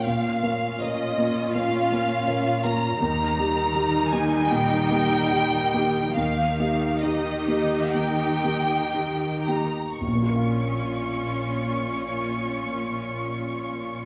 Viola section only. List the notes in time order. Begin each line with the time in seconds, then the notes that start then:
0.06 C#4 F4
3.01 G3 D#4
6.17 D#4 G4
10.00 C#4 F4